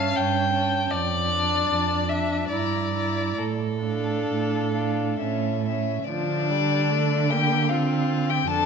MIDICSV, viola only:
0, 0, Header, 1, 2, 480
1, 0, Start_track
1, 0, Key_signature, -1, "minor"
1, 0, Tempo, 756620
1, 573, Time_signature, 3, 2, 24, 8
1, 1066, Tempo, 821918
1, 1546, Tempo, 869565
1, 2026, Tempo, 909091
1, 3466, Tempo, 797872
1, 5005, End_track
2, 0, Start_track
2, 0, Title_t, "Viola"
2, 0, Program_c, 0, 41
2, 0, Note_on_c, 0, 61, 49
2, 325, Note_off_c, 0, 61, 0
2, 338, Note_on_c, 0, 61, 40
2, 570, Note_off_c, 0, 61, 0
2, 824, Note_on_c, 0, 62, 40
2, 1297, Note_off_c, 0, 62, 0
2, 1309, Note_on_c, 0, 62, 40
2, 1544, Note_off_c, 0, 62, 0
2, 1553, Note_on_c, 0, 64, 35
2, 1779, Note_off_c, 0, 64, 0
2, 1788, Note_on_c, 0, 64, 36
2, 2025, Note_off_c, 0, 64, 0
2, 2267, Note_on_c, 0, 62, 33
2, 2736, Note_off_c, 0, 62, 0
2, 2749, Note_on_c, 0, 62, 33
2, 2987, Note_off_c, 0, 62, 0
2, 2993, Note_on_c, 0, 61, 30
2, 3233, Note_off_c, 0, 61, 0
2, 3239, Note_on_c, 0, 61, 34
2, 3459, Note_off_c, 0, 61, 0
2, 3462, Note_on_c, 0, 53, 49
2, 3709, Note_on_c, 0, 55, 45
2, 3718, Note_off_c, 0, 53, 0
2, 3952, Note_on_c, 0, 57, 47
2, 3961, Note_off_c, 0, 55, 0
2, 4197, Note_on_c, 0, 58, 46
2, 4206, Note_off_c, 0, 57, 0
2, 4435, Note_off_c, 0, 58, 0
2, 4445, Note_on_c, 0, 60, 44
2, 4903, Note_off_c, 0, 60, 0
2, 4914, Note_on_c, 0, 62, 47
2, 5005, Note_off_c, 0, 62, 0
2, 5005, End_track
0, 0, End_of_file